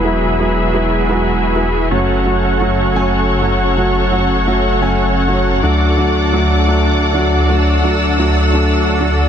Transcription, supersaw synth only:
X:1
M:4/4
L:1/8
Q:1/4=129
K:F#m
V:1 name="Supersaw synth"
[EFGBe]8 | [CFAcf]8- | [CFAcf]8 | [DFAdf]8- |
[DFAdf]8 |]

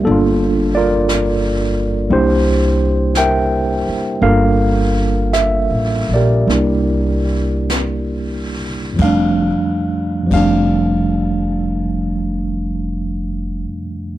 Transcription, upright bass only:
X:1
M:4/4
L:1/8
Q:"Swing" 1/4=51
K:F
V:1 name="Upright bass" clef=bass
G,,,4 C,,3 z | G,,,2- (3G,,, A,,, B,,, C,,4 | F,,, z F,,,6 |]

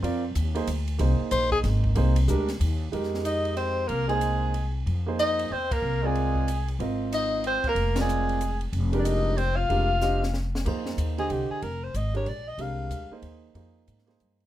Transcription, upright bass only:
X:1
M:3/4
L:1/8
Q:"Swing" 1/4=186
K:Fdor
V:1 name="Upright bass" clef=bass
F,,2 E,,2 D,,2 | C,, z B,,,2 A,,,2 | C,,2 D,,2 E,,2 | F,,6 |
C,,6 | F,,4 =E,,2 | C,,6 | A,,,4- A,,, z |
F,,,6 | F,,,6 | F,,,6 | F,,2 E,,2 C,, z |
F,,,2 A,,,2 B,,,2 | C,,2 D,, z E,,2 | F,,2 A,,2 G,,2 |]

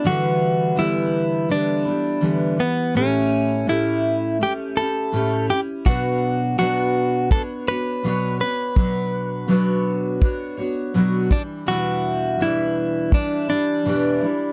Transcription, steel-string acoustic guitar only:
X:1
M:4/4
L:1/8
Q:"Swing 16ths" 1/4=83
K:Bm
V:1 name="Steel-string acoustic guitar"
[D,E,G,B,E]2 [D,E,G,B,E]2 [D,G,B,E] [G,B,E] [D,E,G,B,E] [G,B,E] | [A,,A,CEG]2 [A,,A,CEG]2 [A,CEG] [CEG] [A,,A,CEG] [CEG] | [B,,F,B,DFc]2 [B,,F,B,DFc]2 [B,DFc] [B,DFc] [B,,F,B,DFc] [B,DFc] | [B,,F,B,DFc]2 [B,,F,B,DFc]2 [B,DFc] [B,DFc] [B,,F,B,DFc] [E,G,DE] |
[E,,B,,E,G,DE]2 [E,,B,,E,G,DE]2 [E,G,DE] [E,G,DE] [E,,B,,E,G,DE] [E,G,DE] |]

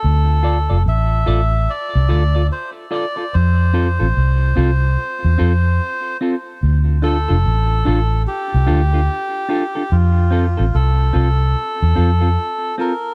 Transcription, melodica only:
X:1
M:4/4
L:1/8
Q:"Swing 16ths" 1/4=73
K:Dm
V:1 name="Melodica"
A2 e2 d2 c d | c6- c z | z A3 G4 | F2 A4- A B |]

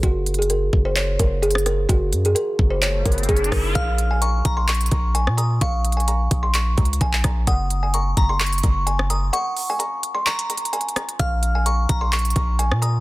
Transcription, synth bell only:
X:1
M:4/4
L:1/8
Q:1/4=129
K:Bbm
V:1 name="Synth bell"
z8 | z8 | f'2 d' b d'3 e' | d'4 z4 |
e'2 d' b d'3 e' | d'4 b2 z2 | f'2 d' b d'3 e' |]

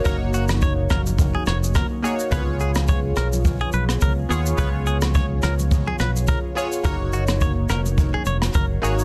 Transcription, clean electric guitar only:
X:1
M:4/4
L:1/16
Q:"Swing 16ths" 1/4=106
K:Dbmix
V:1 name="Clean electric guitar"
B z G z d z B z2 A d z B z A z | c z A z d z B z2 A c z B z A z | c z A z d z B z2 A c z B z A z | B z G z d z B z2 A d z B z A z |]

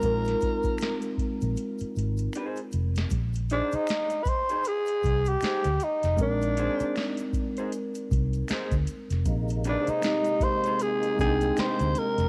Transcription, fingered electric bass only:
X:1
M:4/4
L:1/16
Q:"Swing 16ths" 1/4=78
K:Bbmix
V:1 name="Fingered electric bass" clef=bass
B,,,2 z4 z B,,, z2 A,,,2 z2 F,,,2 | B,,,3 z6 z C,,2 z D,, z F,,, | B,,,3 z6 z C,,2 z D,, z F,,, | B,,,3 z6 z C,,2 z D,, z F,,, |]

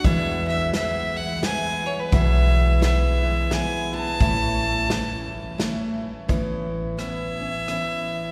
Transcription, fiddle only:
X:1
M:3/4
L:1/16
Q:"Swing" 1/4=86
K:A
V:1 name="Fiddle"
e2 e2 e2 f2 g2 c B | e4 e4 g2 a2- | a8 z4 | z4 e8 |]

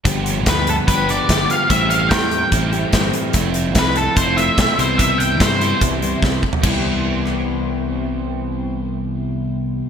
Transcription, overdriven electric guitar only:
X:1
M:4/4
L:1/8
Q:1/4=146
K:C
V:1 name="Overdriven electric guitar" clef=bass
[G,,D,F,G,B,G]4 [G,,D,F,G,B,G]4 | [A,,E,A,CE]4 [A,,E,A,CE]4 | [F,,C,F,A,C]4 [F,,C,F,A,CF]3 [C,E,G,E]- | [C,E,G,E]3 [C,E,G,E]4 z |
[C,G,EG]8- | [C,G,EG]8 |]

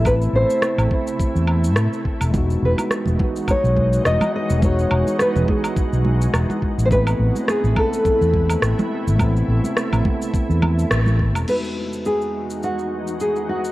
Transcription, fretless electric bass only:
X:1
M:4/4
L:1/16
Q:"Swing 16ths" 1/4=105
K:E
V:1 name="Fretless electric bass" clef=bass
A,,, z A,,, z2 A,,, z3 E,,3 A,, z2 E,,,- | E,,, z E,,, z2 E,,, z3 B,,,2 z E,,, z2 E,,,- | E,,, z E,,, z2 E,,, z3 B,,,2 z E,,, z2 A,,,- | A,,, z A,,, z2 A,,, z3 E,,2 z A,,, z2 A,,,- |
A,,, z A,,, z2 A,,, z3 E,,2 z A,,,3 E,,, | z16 |]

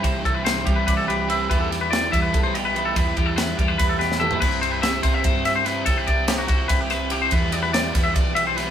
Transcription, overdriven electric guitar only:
X:1
M:7/8
L:1/8
Q:1/4=144
K:Clyd
V:1 name="Overdriven electric guitar"
[C,E,G,CE] [G,CE] [E,G,CE] [G,CE]3 [C,E,G,CE] | [E,G,B,E] [G,B,E] [E,G,B,E] [G,B,E]3 [E,G,B,E] | [E,G,B,E] [G,B,E] [E,G,B,E] [G,B,E]3 [E,G,B,E] | [C,G,CE] [G,CE] [C,G,CE] [G,CE]3 [C,G,CE] |
[C,G,CE] [G,CE] [C,G,CE] [G,CE]3 [C,G,CE] | [E,G,B,E] [G,B,E] [E,G,B,E] [G,B,E]3 [E,G,B,E] |]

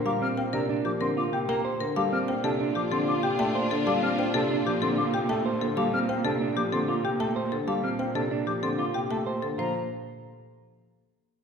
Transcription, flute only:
X:1
M:6/4
L:1/8
Q:1/4=189
K:Dphr
V:1 name="Flute"
d' f' f b z d' c' d' g b z2 | d' f' f a z d' c' d' g a z2 | d' f' f a z d' c' d' g a z2 | d' f' f a z d' c' d' g a z2 |
d' f' f a z d' c' d' g a z2 | b z8 z3 |]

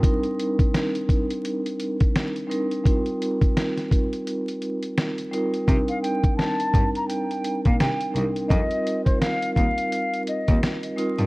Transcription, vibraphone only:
X:1
M:4/4
L:1/8
Q:"Swing 16ths" 1/4=85
K:Cdor
V:1 name="Vibraphone"
[G,CDEB]3 z4 [G,CDEB] | [G,CEFB]3 z4 [G,CEFB] | [G,CDEB]3 z4 [G,CDEB] | [G,CEFB]3 z4 [G,CEFB] |]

